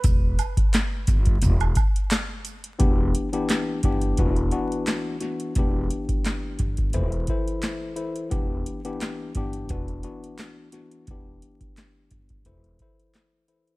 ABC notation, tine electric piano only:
X:1
M:4/4
L:1/16
Q:"Swing 16ths" 1/4=87
K:Em
V:1 name="Tine electric piano"
z16 | [E,B,DG]3 [E,B,DG]3 [E,B,DG]2 [E,B,DF]2 [E,B,DF]4 [E,B,DF]2 | [E,B,DG]8 [E,EAc]2 [E,EAc]4 [E,EAc]2 | [E,B,DG]3 [E,B,DG]3 [E,B,DG]2 [E,B,DF]2 [E,B,DF]4 [E,B,DF]2 |
[E,B,DG]8 [E,EAc]2 [E,EAc]4 [E,EAc]2 |]